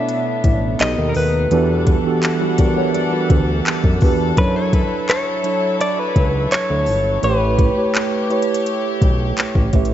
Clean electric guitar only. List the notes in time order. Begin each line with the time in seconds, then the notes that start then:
Already playing: E5
0.81 D#5
1.09 A#4
1.17 B4
4.38 B4
4.56 C#5
4.74 B4
5.10 C#5
5.81 D5
5.99 B4
6.52 C#5
7.24 B4